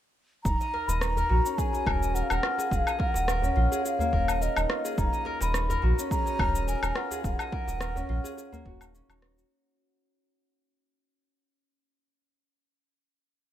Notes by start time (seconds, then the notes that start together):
0.44 D#1 D#4 A#5, kick, djembe tone, cabasa
0.61 D#5, cabasa
0.74 A#4, djembe slap
0.88 D#1 D#5 B5, djembe slap, djembe tone, cabasa
1.01 D#4 A#5, cross-stick, cabasa
1.17 A#4, djembe bass, cabasa
1.29 A#1 F#4, djembe slap
1.45 C#4, cabasa
1.58 G#4 G#5, kick, cabasa
1.73 D#5, djembe slap, cabasa
1.86 D#1 A#4, kick, djembe bass, low woodblock
2.02 D#5, cabasa
2.15 A#4 F#5, cabasa
2.22 F5
2.30 D#1 A#4 F#5, cabasa, low woodblock
2.43 F4, cross-stick
2.58 G#4, djembe slap, djembe tone, cabasa
2.71 D#1 G#4 F#5, kick, djembe tone, cabasa
2.75 F5
2.87 D#5, cabasa, low woodblock
2.99 A#4 F#5, kick, djembe slap
3.14 D#1 D#5, djembe slap, djembe tone, cabasa
3.28 A#4, cross-stick, cabasa
3.42 C#4, djembe bass, cabasa
3.56 A#1 F4, djembe slap
3.72 G#4, cabasa
3.78 F#5
3.85 G#4 F5, cabasa
3.99 A#3, djembe bass, cabasa
4.12 D#1 A#4, kick, djembe tone, djembe bass
4.28 D#5, cabasa, low woodblock
4.41 A#4 D#5, cabasa
4.56 D#1 D#4, cabasa, low woodblock
4.69 F4, cross-stick
4.85 G#4, cabasa
4.97 D#1 D#4 A#5, kick, djembe tone, cabasa
5.13 D#5, cabasa
5.25 A#4, djembe slap
5.41 D#1 D#5 B5, djembe slap, djembe tone, cabasa
5.54 D#4, cross-stick, cabasa
5.70 A#4, djembe bass, cabasa
5.82 A#1 F#4, djembe slap
5.99 C#4, cabasa
6.11 G#4 A#5, kick, cabasa
6.26 D#5, djembe slap, cabasa
6.39 D#1 A#4, kick, djembe bass, low woodblock
6.55 D#5, cabasa
6.68 A#4 G#5, cabasa
6.83 D#1 A#4, cabasa, low woodblock
6.96 F4 F#5, cross-stick
7.11 G#4, djembe slap, djembe tone, cabasa
7.24 D#1 G#4 F#5, kick, cabasa
7.39 D#5, cabasa, low woodblock
7.52 A#4, kick, djembe slap
7.67 D#1 D#5, djembe slap, djembe tone, cabasa
7.81 A#4, cross-stick, cabasa
7.96 C#4, djembe bass, cabasa
8.09 A#1 F4, djembe slap
8.24 G#4, cabasa
8.37 G#4, cabasa
8.52 A#3, djembe bass, cabasa
8.65 D#1 F#4, kick, djembe tone, djembe bass
8.81 D#4, cabasa, low woodblock
8.94 C#4, cabasa
9.09 D#1 D#4, cabasa, low woodblock
9.22 D#4, cross-stick
9.37 F#4, cabasa